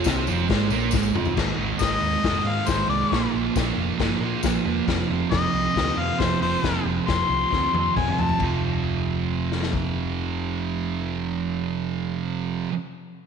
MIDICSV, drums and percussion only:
0, 0, Header, 1, 2, 480
1, 0, Start_track
1, 0, Tempo, 437956
1, 1486, Time_signature, 4, 2, 24, 8
1, 6294, Tempo, 443131
1, 14442, End_track
2, 0, Start_track
2, 0, Title_t, "Drums"
2, 46, Note_on_c, 9, 54, 99
2, 63, Note_on_c, 9, 49, 64
2, 67, Note_on_c, 9, 36, 111
2, 71, Note_on_c, 9, 38, 111
2, 156, Note_off_c, 9, 54, 0
2, 172, Note_off_c, 9, 49, 0
2, 176, Note_off_c, 9, 36, 0
2, 180, Note_on_c, 9, 54, 32
2, 181, Note_off_c, 9, 38, 0
2, 290, Note_off_c, 9, 54, 0
2, 296, Note_on_c, 9, 54, 70
2, 406, Note_off_c, 9, 54, 0
2, 416, Note_on_c, 9, 54, 26
2, 526, Note_off_c, 9, 54, 0
2, 529, Note_on_c, 9, 54, 29
2, 545, Note_on_c, 9, 36, 102
2, 546, Note_on_c, 9, 49, 67
2, 555, Note_on_c, 9, 38, 103
2, 638, Note_off_c, 9, 54, 0
2, 652, Note_on_c, 9, 54, 25
2, 655, Note_off_c, 9, 36, 0
2, 655, Note_off_c, 9, 49, 0
2, 664, Note_off_c, 9, 38, 0
2, 762, Note_off_c, 9, 54, 0
2, 771, Note_on_c, 9, 54, 66
2, 880, Note_off_c, 9, 54, 0
2, 881, Note_on_c, 9, 54, 29
2, 991, Note_off_c, 9, 54, 0
2, 996, Note_on_c, 9, 54, 96
2, 1023, Note_on_c, 9, 36, 124
2, 1034, Note_on_c, 9, 38, 69
2, 1106, Note_off_c, 9, 54, 0
2, 1126, Note_on_c, 9, 54, 71
2, 1133, Note_off_c, 9, 36, 0
2, 1144, Note_off_c, 9, 38, 0
2, 1235, Note_off_c, 9, 54, 0
2, 1265, Note_on_c, 9, 45, 94
2, 1372, Note_on_c, 9, 54, 32
2, 1375, Note_off_c, 9, 45, 0
2, 1378, Note_on_c, 9, 43, 85
2, 1482, Note_off_c, 9, 54, 0
2, 1487, Note_off_c, 9, 43, 0
2, 1502, Note_on_c, 9, 36, 97
2, 1503, Note_on_c, 9, 57, 94
2, 1511, Note_on_c, 9, 38, 101
2, 1611, Note_off_c, 9, 36, 0
2, 1612, Note_off_c, 9, 57, 0
2, 1621, Note_off_c, 9, 38, 0
2, 1963, Note_on_c, 9, 54, 101
2, 1981, Note_on_c, 9, 36, 105
2, 1982, Note_on_c, 9, 46, 54
2, 1990, Note_on_c, 9, 38, 103
2, 2073, Note_off_c, 9, 54, 0
2, 2090, Note_off_c, 9, 36, 0
2, 2091, Note_off_c, 9, 46, 0
2, 2100, Note_off_c, 9, 38, 0
2, 2456, Note_on_c, 9, 46, 53
2, 2458, Note_on_c, 9, 36, 96
2, 2465, Note_on_c, 9, 38, 117
2, 2566, Note_off_c, 9, 46, 0
2, 2567, Note_off_c, 9, 36, 0
2, 2574, Note_off_c, 9, 38, 0
2, 2921, Note_on_c, 9, 54, 91
2, 2938, Note_on_c, 9, 36, 123
2, 2939, Note_on_c, 9, 46, 59
2, 2948, Note_on_c, 9, 38, 118
2, 3031, Note_off_c, 9, 54, 0
2, 3048, Note_off_c, 9, 36, 0
2, 3048, Note_off_c, 9, 46, 0
2, 3057, Note_off_c, 9, 38, 0
2, 3419, Note_on_c, 9, 36, 96
2, 3420, Note_on_c, 9, 46, 53
2, 3428, Note_on_c, 9, 38, 103
2, 3529, Note_off_c, 9, 36, 0
2, 3529, Note_off_c, 9, 46, 0
2, 3538, Note_off_c, 9, 38, 0
2, 3898, Note_on_c, 9, 54, 97
2, 3899, Note_on_c, 9, 36, 114
2, 3900, Note_on_c, 9, 46, 59
2, 3909, Note_on_c, 9, 38, 110
2, 4008, Note_off_c, 9, 36, 0
2, 4008, Note_off_c, 9, 54, 0
2, 4010, Note_off_c, 9, 46, 0
2, 4019, Note_off_c, 9, 38, 0
2, 4379, Note_on_c, 9, 46, 52
2, 4380, Note_on_c, 9, 36, 104
2, 4388, Note_on_c, 9, 38, 110
2, 4488, Note_off_c, 9, 46, 0
2, 4490, Note_off_c, 9, 36, 0
2, 4497, Note_off_c, 9, 38, 0
2, 4853, Note_on_c, 9, 54, 98
2, 4860, Note_on_c, 9, 46, 58
2, 4863, Note_on_c, 9, 36, 110
2, 4869, Note_on_c, 9, 38, 110
2, 4963, Note_off_c, 9, 54, 0
2, 4970, Note_off_c, 9, 46, 0
2, 4972, Note_off_c, 9, 36, 0
2, 4979, Note_off_c, 9, 38, 0
2, 5346, Note_on_c, 9, 46, 52
2, 5347, Note_on_c, 9, 36, 104
2, 5355, Note_on_c, 9, 38, 105
2, 5456, Note_off_c, 9, 36, 0
2, 5456, Note_off_c, 9, 46, 0
2, 5465, Note_off_c, 9, 38, 0
2, 5823, Note_on_c, 9, 46, 49
2, 5828, Note_on_c, 9, 36, 105
2, 5831, Note_on_c, 9, 38, 100
2, 5932, Note_off_c, 9, 46, 0
2, 5938, Note_off_c, 9, 36, 0
2, 5941, Note_off_c, 9, 38, 0
2, 6314, Note_on_c, 9, 36, 103
2, 6318, Note_on_c, 9, 46, 49
2, 6327, Note_on_c, 9, 38, 108
2, 6422, Note_off_c, 9, 36, 0
2, 6427, Note_off_c, 9, 46, 0
2, 6435, Note_off_c, 9, 38, 0
2, 6788, Note_on_c, 9, 46, 50
2, 6789, Note_on_c, 9, 36, 113
2, 6797, Note_on_c, 9, 38, 116
2, 6896, Note_off_c, 9, 46, 0
2, 6898, Note_off_c, 9, 36, 0
2, 6905, Note_off_c, 9, 38, 0
2, 7258, Note_on_c, 9, 46, 47
2, 7265, Note_on_c, 9, 36, 92
2, 7267, Note_on_c, 9, 38, 99
2, 7366, Note_off_c, 9, 46, 0
2, 7373, Note_off_c, 9, 36, 0
2, 7375, Note_off_c, 9, 38, 0
2, 7739, Note_on_c, 9, 46, 56
2, 7744, Note_on_c, 9, 36, 110
2, 7748, Note_on_c, 9, 38, 103
2, 7848, Note_off_c, 9, 46, 0
2, 7852, Note_off_c, 9, 36, 0
2, 7856, Note_off_c, 9, 38, 0
2, 8224, Note_on_c, 9, 36, 93
2, 8228, Note_on_c, 9, 38, 55
2, 8332, Note_off_c, 9, 36, 0
2, 8337, Note_off_c, 9, 38, 0
2, 8462, Note_on_c, 9, 48, 70
2, 8571, Note_off_c, 9, 48, 0
2, 8702, Note_on_c, 9, 36, 118
2, 8705, Note_on_c, 9, 47, 82
2, 8810, Note_off_c, 9, 36, 0
2, 8813, Note_off_c, 9, 47, 0
2, 8826, Note_on_c, 9, 45, 68
2, 8934, Note_off_c, 9, 45, 0
2, 8940, Note_on_c, 9, 43, 89
2, 9048, Note_off_c, 9, 43, 0
2, 9055, Note_on_c, 9, 43, 80
2, 9163, Note_off_c, 9, 43, 0
2, 9168, Note_on_c, 9, 57, 78
2, 9176, Note_on_c, 9, 36, 95
2, 9276, Note_off_c, 9, 57, 0
2, 9284, Note_off_c, 9, 36, 0
2, 10383, Note_on_c, 9, 38, 58
2, 10491, Note_off_c, 9, 38, 0
2, 10504, Note_on_c, 9, 38, 63
2, 10612, Note_off_c, 9, 38, 0
2, 10616, Note_on_c, 9, 36, 93
2, 10724, Note_off_c, 9, 36, 0
2, 14442, End_track
0, 0, End_of_file